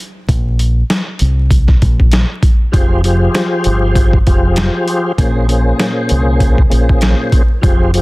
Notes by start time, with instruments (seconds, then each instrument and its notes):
0.29 fingered electric bass A#1, kick, closed hi-hat
0.59 closed hi-hat
0.90 snare, closed hi-hat
1.19 fingered electric bass C2, closed hi-hat
1.51 kick, closed hi-hat
1.68 kick, snare
1.82 fingered electric bass A#1, kick, closed hi-hat
2.00 kick
2.12 snare, closed hi-hat
2.43 kick, closed hi-hat
2.72 fingered electric bass F1, tonewheel organ F3 F4 G4 G#4 C5, kick, closed hi-hat
3.04 tonewheel organ F3 F4 G4 G#4 C5, closed hi-hat
3.35 finger snap, snare, closed hi-hat
3.64 fingered electric bass G1, closed hi-hat
3.95 kick, closed hi-hat
4.13 kick
4.26 fingered electric bass F1, tonewheel organ F3 F4 G4 G#4 C5, kick, closed hi-hat
4.56 finger snap, snare, closed hi-hat
4.88 closed hi-hat
5.17 fingered electric bass A#1, tonewheel organ A#2 A#3 C#4 G#4 C5, kick, closed hi-hat
5.47 tonewheel organ A#2 A#3 C#4 G#4 C5, closed hi-hat
5.79 finger snap, snare, closed hi-hat
6.09 fingered electric bass C2, closed hi-hat
6.40 kick, closed hi-hat
6.58 kick
6.70 fingered electric bass A#1, tonewheel organ A#2 A#3 C#4 G#4 C5, closed hi-hat
6.89 kick
7.01 finger snap, snare, closed hi-hat
7.32 kick, closed hi-hat
7.62 fingered electric bass F1, tonewheel organ F3 F4 G4 G#4 C5, kick, closed hi-hat
7.94 tonewheel organ F3 F4 G4 G#4 C5, closed hi-hat